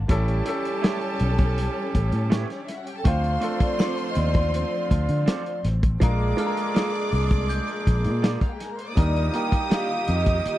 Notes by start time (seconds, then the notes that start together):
Already playing: A5
0.08 A1 E3 G3 C#4 E4 G4 A4 A5, kick, closed hi-hat
0.28 closed hi-hat
0.45 G3 C#4 E4 A4, closed hi-hat
0.65 closed hi-hat
0.82 A3 E4 G4 C#5, snare, closed hi-hat
1.01 closed hi-hat
1.20 B1, closed hi-hat
1.38 kick, closed hi-hat
1.58 closed hi-hat
1.95 A1, kick, closed hi-hat
2.12 A2, closed hi-hat
2.30 A3 E4 G4 C#5, snare, closed hi-hat
2.41 B3 B4
2.50 C#4 C#5, snare, closed hi-hat
2.58 D4 D5
2.67 E4 E5, snare, closed hi-hat
2.76 F#4 F#5
2.86 G4 G5, closed hi-hat
2.96 A4 G5 A5
3.04 D2 D3 F3 A3 C4 D4 F4 C5 F5 C6, kick, closed hi-hat
3.24 closed hi-hat
3.41 A3 D4 F4 A4, closed hi-hat
3.60 D5, kick, closed hi-hat
3.79 C4 F4 A4 C5 D5 C6, snare, closed hi-hat
3.98 closed hi-hat
4.10 D#5
4.15 D#2 D5, closed hi-hat
4.34 kick, closed hi-hat
4.54 closed hi-hat
4.91 D2, kick, closed hi-hat
5.09 D3, closed hi-hat
5.26 C4 F4 A4 D5, snare, closed hi-hat
5.46 closed hi-hat
5.65 A1, snare, closed hi-hat
5.83 kick, closed hi-hat
6.00 A#1 F3 G#3 A#3 D4 F4 G#4 A#4 D5 D6, kick, closed hi-hat
6.37 G#3 D4 F4 A4 F6, closed hi-hat
6.46 A#4
6.57 closed hi-hat
6.74 A#3 F4 G#4 D5, snare, closed hi-hat
6.94 closed hi-hat
7.12 C2, open hi-hat
7.30 kick, closed hi-hat
7.49 G6, closed hi-hat
7.68 closed hi-hat
7.87 A#1, kick, closed hi-hat
8.04 A#2, closed hi-hat
8.22 A#3 F4 G#4 D5, snare, closed hi-hat
8.41 F4 F5, kick, closed hi-hat
8.51 G4 G5
8.59 G#4 G#5, snare, closed hi-hat
8.69 A#4 A#5
8.79 C5 C6, closed hi-hat
8.87 D5 D6
8.95 D#2 D#3 G3 D4 D#4 F4 G4 A#4 D5 D#6, kick, closed hi-hat
9.16 closed hi-hat
9.33 G3 A#3 D#4 A#4 G5, closed hi-hat
9.52 kick, closed hi-hat
9.70 D4 G4 A#4 D5 F5, snare, closed hi-hat
9.89 closed hi-hat
10.07 F2 D#5, closed hi-hat
10.26 kick, closed hi-hat
10.45 D#5, muted fingered electric bass stroke, closed hi-hat